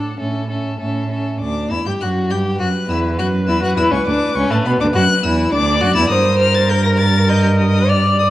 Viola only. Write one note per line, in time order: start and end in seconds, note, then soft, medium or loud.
0.00 0.18 D4 soft
0.19 0.47 C#4 soft
0.48 0.79 C#4 soft
0.79 1.10 C#4 soft
1.11 1.40 C#4 soft
2.59 5.48 B4 medium
5.53 6.13 D5 loud
6.12 6.72 C5 loud
6.71 7.89 A#4 loud
7.88 8.30 D5 medium